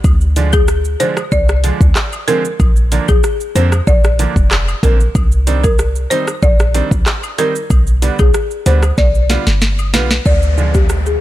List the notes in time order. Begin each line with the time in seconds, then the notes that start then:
0.04 D2, kick, high woodblock, shaker
0.21 shaker
0.36 D3 F3 G#3 D4, closed hi-hat, cabasa, shaker
0.53 G#4, kick, high woodblock, shaker
0.68 cross-stick, shaker
0.85 shaker
1.00 D3 F3 G#3 D4 C5, closed hi-hat, cabasa, shaker
1.17 cross-stick, high woodblock, shaker
1.32 C2 D5, kick, shaker
1.49 cross-stick, shaker
1.64 D3 F3 G#3 D4, closed hi-hat, cabasa, shaker
1.81 D2, kick, shaker
1.96 cross-stick, clap, shaker
2.13 high woodblock, shaker
2.28 D3 F3 G#3 C4 A#4, closed hi-hat, cabasa, shaker
2.45 shaker
2.60 A#1, kick, high woodblock, shaker
2.76 shaker
2.92 D3 F3 A#3 D4, closed hi-hat, cabasa, shaker
3.08 A#1 G#4, kick, high woodblock, shaker
3.23 cross-stick, shaker
3.40 shaker
3.55 F2 D3 F3 A#3 C4 C5, closed hi-hat, cabasa, shaker
3.72 cross-stick, high woodblock, shaker
3.87 A#1 D5, kick, shaker
4.04 cross-stick, shaker
4.19 D3 F3 A#3 D4, closed hi-hat, cabasa, shaker
4.36 F1, kick, shaker
4.51 cross-stick, clap, shaker
4.68 high woodblock, shaker
4.83 A#1 D3 F3 A#3 C4 A#4, kick, closed hi-hat, cabasa, shaker
5.00 shaker
5.15 C2, kick, high woodblock, shaker
5.32 shaker
5.47 D#3 G3 C4 D4, closed hi-hat, cabasa, shaker
5.64 A#4, kick, high woodblock, shaker
5.79 cross-stick, shaker
5.96 shaker
6.10 D#3 G3 C4 D#4 C5, closed hi-hat, cabasa, shaker
6.28 cross-stick, high woodblock, shaker
6.43 A#1 D5, kick, shaker
6.60 cross-stick, shaker
6.74 D#3 G3 C4 D4, closed hi-hat, cabasa, shaker
6.91 C2, kick, shaker
7.06 cross-stick, clap, shaker
7.23 high woodblock, shaker
7.38 D#3 G3 C4 D#4 A#4, closed hi-hat, cabasa, shaker
7.55 shaker
7.70 B1, kick, high woodblock, shaker
7.87 shaker
8.02 D3 G3 B3 D4, closed hi-hat, cabasa, shaker
8.19 B1 G#4, kick, high woodblock, shaker
8.34 cross-stick, shaker
8.51 shaker
8.66 D2 D3 G3 B3 D4 C5, closed hi-hat, cabasa, shaker
8.83 cross-stick, high woodblock, shaker
8.98 B1 D5, kick, snare, shaker
9.15 shaker
9.30 D3 G3 B3 F4, snare, closed hi-hat, cabasa, shaker
9.47 G1, snare, shaker
9.62 snare, shaker
9.79 high woodblock, shaker
9.94 B1 D3 G3 B3 F4 B4, snare, closed hi-hat, cabasa, shaker
10.11 snare, shaker
10.26 D2 D5, kick, downlifter, shaker
10.42 shaker
10.58 D3 F3 G#3 D4, shaker
10.74 G4, kick, shaker
10.89 cross-stick, shaker
11.06 G#4, shaker